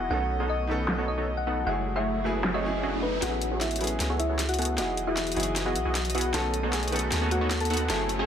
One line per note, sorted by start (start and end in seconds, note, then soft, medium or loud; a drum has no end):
0.00 0.13 F#3 medium
0.00 0.13 D#4 medium
0.00 0.13 E4 medium
0.00 0.12 G#4 loud
0.00 1.63 D#5 medium
0.09 1.65 B1 medium
0.09 0.66 D#3 medium
0.09 1.65 A3 medium
0.09 0.67 B3 medium
0.09 1.65 B3 medium
0.09 0.38 B3 medium
0.09 0.67 C#4 medium
0.09 0.38 D#4 medium
0.09 0.38 F#4 medium
0.09 0.38 A4 medium
0.09 0.38 C#5 medium
0.09 0.41 F#5 loud
0.09 riser medium
0.13 0.68 A4 medium
0.40 0.67 B3 medium
0.40 0.67 D#4 medium
0.40 0.67 F#4 medium
0.40 0.67 A4 medium
0.40 0.67 C#5 loud
0.50 0.73 D#5 medium
0.67 1.63 D#3 medium
0.67 1.64 B3 medium
0.67 0.96 B3 medium
0.67 1.65 C#4 medium
0.67 0.96 D#4 medium
0.67 0.96 F#4 medium
0.67 0.96 A4 medium
0.67 1.65 A4 loud
0.67 0.96 B4 medium
0.88 snare loud
0.88 clap medium
0.98 1.16 B3 medium
0.98 1.16 D#4 medium
0.98 1.16 F#4 medium
0.98 1.16 A4 medium
0.98 1.16 C#5 loud
1.08 1.31 D#5 medium
1.18 1.31 B3 medium
1.18 1.31 D#4 medium
1.18 1.31 F#4 medium
1.18 1.31 A4 medium
1.18 1.31 C#5 loud
1.37 1.60 F#5 medium
1.47 1.64 B3 medium
1.47 1.64 D#4 medium
1.47 1.64 F#4 medium
1.47 1.64 A4 medium
1.47 1.64 F#5 loud
1.65 3.21 F#1 medium
1.65 2.22 F#3 medium
1.65 3.21 F#3 medium
1.65 2.22 A3 medium
1.65 1.93 A3 medium
1.65 3.21 A3 medium
1.65 1.93 E4 medium
1.65 3.21 E4 medium
1.65 2.23 E4 medium
1.65 1.93 F#4 medium
1.65 3.21 G#4 medium
1.65 1.93 G#4 medium
1.65 2.24 G#4 medium
1.65 1.93 C#5 medium
1.65 1.90 F#5 medium
1.96 2.23 A3 medium
1.96 2.23 E4 medium
1.96 2.23 F#4 medium
1.96 2.23 G#4 medium
1.96 2.23 C#5 loud
1.96 2.19 E5 medium
2.24 2.61 F#3 medium
2.24 2.62 A3 medium
2.24 2.52 A3 medium
2.24 2.52 E4 medium
2.24 2.62 E4 medium
2.24 2.52 F#4 medium
2.24 2.52 G#4 medium
2.24 2.63 G#4 loud
2.24 2.52 B4 medium
2.44 snare loud
2.44 clap medium
2.54 2.71 A3 loud
2.54 2.71 E4 medium
2.54 2.71 F#4 medium
2.54 2.71 G#4 medium
2.54 2.71 C#5 loud
2.54 2.77 D#5 medium
2.62 3.19 F#3 medium
2.62 3.20 A3 medium
2.62 3.21 E4 medium
2.62 3.21 G#4 loud
2.83 3.20 A3 medium
2.83 3.20 E4 medium
2.83 3.20 F#4 medium
2.83 3.20 G#4 medium
2.83 3.20 D#5 loud
3.03 3.18 B4 medium
3.20 3.99 A1 medium
3.20 3.77 F#3 medium
3.20 4.77 G#3 medium
3.20 4.77 A3 medium
3.20 3.78 B3 medium
3.20 3.49 B3 medium
3.20 4.77 C#4 medium
3.20 3.79 C#4 medium
3.20 3.49 F#4 medium
3.20 3.53 F#4 medium
3.20 3.49 G#4 medium
3.20 3.49 A4 medium
3.20 3.49 C#5 medium
3.20 3.53 F#5 loud
3.20 snare soft
3.20 closed hi-hat medium
3.20 riser medium
3.24 3.80 G#4 medium
3.42 closed hi-hat medium
3.52 3.79 B3 medium
3.52 3.78 F#4 medium
3.52 3.78 G#4 medium
3.52 3.78 A4 medium
3.52 3.78 C#5 loud
3.61 3.84 E4 medium
3.61 3.84 E5 medium
3.61 snare soft
3.61 closed hi-hat medium
3.71 closed hi-hat soft
3.76 4.75 F#3 medium
3.76 closed hi-hat medium
3.80 4.76 B3 medium
3.80 4.08 B3 medium
3.80 4.76 C#4 medium
3.80 4.08 F#4 medium
3.80 4.08 G#4 medium
3.80 4.77 G#4 loud
3.80 4.08 A4 medium
3.80 4.08 B4 medium
3.80 closed hi-hat soft
3.84 closed hi-hat medium
3.87 closed hi-hat medium
4.00 4.80 C#2 medium
4.00 snare soft
4.00 closed hi-hat medium
4.10 4.27 B3 medium
4.10 4.27 F#4 medium
4.10 4.27 G#4 medium
4.10 4.27 A4 medium
4.10 4.27 C#5 loud
4.20 4.43 E4 medium
4.20 4.43 E5 medium
4.20 closed hi-hat medium
4.29 4.42 B3 medium
4.29 4.42 F#4 medium
4.29 4.42 G#4 medium
4.29 4.42 A4 medium
4.29 4.42 C#5 loud
4.39 snare medium
4.39 closed hi-hat medium
4.49 4.72 F#4 medium
4.49 4.72 F#5 medium
4.49 closed hi-hat soft
4.54 closed hi-hat medium
4.59 4.76 B3 loud
4.59 4.76 F#4 medium
4.59 4.76 G#4 medium
4.59 4.76 A4 medium
4.59 4.76 F#5 loud
4.59 closed hi-hat soft
4.62 closed hi-hat medium
4.65 closed hi-hat medium
4.76 5.36 E1 loud
4.76 6.33 E3 medium
4.76 5.33 F#3 medium
4.76 5.05 B3 medium
4.76 5.34 D#4 medium
4.76 5.05 E4 medium
4.76 5.35 E4 medium
4.76 5.01 F#4 medium
4.76 5.05 F#4 medium
4.76 6.33 F#4 medium
4.76 5.05 G#4 medium
4.76 6.33 G#4 medium
4.76 7.87 D#5 medium
4.76 5.05 D#5 medium
4.76 5.01 F#5 medium
4.76 snare soft
4.76 closed hi-hat medium
4.80 5.35 G#4 medium
4.97 closed hi-hat medium
5.07 5.34 B3 medium
5.07 5.34 E4 medium
5.07 5.30 E4 medium
5.07 5.34 F#4 medium
5.07 5.34 G#4 medium
5.07 5.34 D#5 loud
5.07 5.30 E5 medium
5.17 snare medium
5.17 closed hi-hat medium
5.27 closed hi-hat soft
5.32 6.31 F#3 medium
5.32 closed hi-hat medium
5.36 5.77 F#1 medium
5.36 5.64 B3 medium
5.36 6.31 D#4 medium
5.36 5.64 E4 medium
5.36 6.32 E4 medium
5.36 5.64 F#4 medium
5.36 5.64 G#4 medium
5.36 6.33 G#4 loud
5.36 5.64 C#5 medium
5.36 closed hi-hat soft
5.40 closed hi-hat medium
5.43 closed hi-hat medium
5.56 snare medium
5.56 closed hi-hat medium
5.66 5.83 B3 loud
5.66 5.83 E4 medium
5.66 5.89 F#4 medium
5.66 5.83 F#4 medium
5.66 5.83 G#4 medium
5.66 5.83 D#5 loud
5.66 5.89 F#5 medium
5.76 5.85 B1 medium
5.76 closed hi-hat medium
5.85 6.33 B1 medium
5.85 5.98 B3 medium
5.85 5.98 E4 medium
5.85 5.98 F#4 medium
5.85 5.98 G#4 medium
5.85 5.98 D#5 loud
5.95 snare medium
5.95 closed hi-hat medium
6.05 closed hi-hat soft
6.10 closed hi-hat medium
6.15 6.32 B3 loud
6.15 6.32 E4 medium
6.15 6.30 F#4 medium
6.15 6.32 F#4 medium
6.15 6.32 G#4 medium
6.15 6.32 F#5 loud
6.15 6.30 F#5 medium
6.15 closed hi-hat soft
6.18 closed hi-hat medium
6.21 closed hi-hat medium
6.32 7.11 B1 loud
6.32 6.89 D#3 medium
6.32 7.89 A3 medium
6.32 6.90 B3 medium
6.32 6.61 B3 medium
6.32 7.89 B3 medium
6.32 6.91 C#4 medium
6.32 6.61 D#4 medium
6.32 6.61 F#4 medium
6.32 6.61 A4 medium
6.32 6.65 A4 medium
6.32 6.91 A4 medium
6.32 6.61 C#5 medium
6.32 6.65 A5 loud
6.32 snare medium
6.32 closed hi-hat medium
6.54 closed hi-hat medium
6.63 6.90 B3 medium
6.63 6.90 D#4 medium
6.63 6.90 F#4 medium
6.63 6.90 A4 medium
6.63 6.90 C#5 loud
6.73 6.96 G#4 medium
6.73 6.96 G#5 medium
6.73 snare medium
6.73 closed hi-hat medium
6.83 closed hi-hat soft
6.88 7.87 D#3 medium
6.88 closed hi-hat medium
6.92 7.87 B3 medium
6.92 7.19 B3 medium
6.92 7.88 C#4 medium
6.92 7.19 D#4 medium
6.92 7.19 F#4 medium
6.92 7.19 A4 medium
6.92 7.89 A4 loud
6.92 7.19 B4 medium
6.92 closed hi-hat soft
6.96 closed hi-hat medium
6.99 closed hi-hat medium
7.12 7.89 D#2 loud
7.12 snare medium
7.12 closed hi-hat medium
7.22 7.39 B3 loud
7.22 7.39 D#4 medium
7.22 7.39 F#4 medium
7.22 7.39 A4 medium
7.22 7.39 C#5 loud
7.31 7.55 F#4 medium
7.31 7.55 F#5 medium
7.31 closed hi-hat medium
7.41 7.54 B3 medium
7.41 7.54 D#4 medium
7.41 7.54 F#4 medium
7.41 7.54 A4 medium
7.41 7.54 C#5 loud
7.51 snare medium
7.51 closed hi-hat medium
7.60 7.84 A4 medium
7.60 7.84 A5 medium
7.60 closed hi-hat soft
7.65 closed hi-hat medium
7.70 7.88 B3 loud
7.70 7.88 D#4 medium
7.70 7.88 F#4 medium
7.70 7.88 A4 medium
7.70 7.88 F#5 loud
7.70 closed hi-hat soft
7.74 closed hi-hat medium
7.77 closed hi-hat medium
7.88 8.26 F#1 loud
7.88 8.26 F#3 medium
7.88 8.26 A3 medium
7.88 8.17 A3 medium
7.88 8.26 E4 medium
7.88 8.17 E4 medium
7.88 8.26 E4 medium
7.88 8.17 F#4 medium
7.88 8.26 G#4 medium
7.88 8.17 G#4 medium
7.88 8.26 G#4 medium
7.88 8.13 A4 medium
7.88 8.17 C#5 medium
7.88 8.13 A5 loud
7.88 snare medium
7.88 closed hi-hat medium
8.09 closed hi-hat medium
8.19 8.26 A3 medium
8.19 8.26 E4 medium
8.19 8.26 F#4 medium
8.19 8.26 G#4 medium
8.19 8.26 C#5 loud
8.19 8.26 G#5 medium